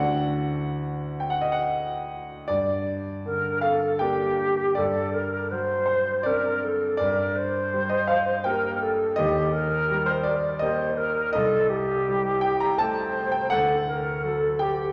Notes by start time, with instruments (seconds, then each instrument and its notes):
Already playing: grand piano D2 D3 A3 D4 F#4 D5 F#5
1.20 grand piano G5
1.30 grand piano F#5
1.41 grand piano D#5
1.52 grand piano F#5
2.48 grand piano G2 D5
3.26 grand piano D3, flute A#4
3.61 flute A4, grand piano F5
3.99 grand piano A#3 D4 G5, flute G4
4.75 grand piano G2 D5, flute A4
5.14 flute A#4
5.51 grand piano F#3, flute C5
5.86 grand piano C5
6.23 grand piano C4 D4 D5, flute A#4
6.65 flute A4
6.97 grand piano G2 D5, flute A#4
7.36 flute C5
7.73 grand piano G3
7.89 grand piano D#5
8.07 grand piano F5
8.44 grand piano A#3 G4 G5, flute A#4
8.82 flute A4
9.16 grand piano D#2 D#5, flute G4
9.53 flute A#4
9.90 grand piano G3
10.06 grand piano C5
10.23 grand piano D5
10.59 grand piano A#3 G4 D#5, flute C5
10.97 flute A#4
11.33 grand piano C2 D#5, flute A4
11.70 flute G4
12.08 grand piano G3
12.41 grand piano G5
12.60 grand piano A#5
12.78 grand piano A3 A4 A5, flute C5
13.32 grand piano G5
13.50 grand piano D2 F#5, flute A4
13.88 flute A#4
14.24 grand piano F#3, flute A4
14.59 flute G4, grand piano G5